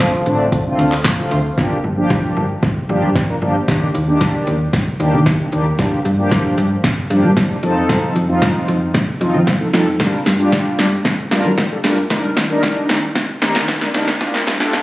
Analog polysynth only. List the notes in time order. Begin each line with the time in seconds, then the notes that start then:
0.00 D3 A3 C4 F4
0.26 D3 A3 C4 D4
0.65 D3 A3 C4 F4
1.18 D3 A3 C4 F4
1.57 F3 A#3 D4 G4
1.97 F3 A#3 D4 G4
2.89 F3 A#3 D4 G4
3.28 F3 A#3 D4 A#4
3.42 F3 A#3 D4 G4
3.68 D#3 A#3 D4 G4
4.07 D#3 A#3 D4 G4
4.99 D#3 A#3 D4 G4
5.39 D#3 A#3 D4 G4
5.52 D#3 A#3 D4 G4
5.78 F3 A#3 D4 G4
6.18 F3 A#3 D4 G4
7.10 F3 A#3 D4 G4
7.50 F3 A#3 D4 G4
7.63 F3 C4 D#4 A4
8.29 F3 C4 D#4 F4
9.21 F3 C4 D#4 F4
9.60 F3 C4 D#4 A4
9.73 F3 C4 D#4 A4
10.00 G3 D4 F4 A#4
10.39 G3 D4 F4 G4
11.31 G3 D4 F4 A#4
11.71 G3 D4 F4 A4
11.84 G3 D4 F4 A#4
12.10 G3 D4 D#4 A#4
12.49 G3 D4 D#4 A#4
13.42 G3 D4 D#4 A#4
13.81 G3 D4 D#4 A#4
13.94 G3 D4 D#4 A#4
14.21 G3 D4 F4 A#4
14.60 G3 D4 F4 A4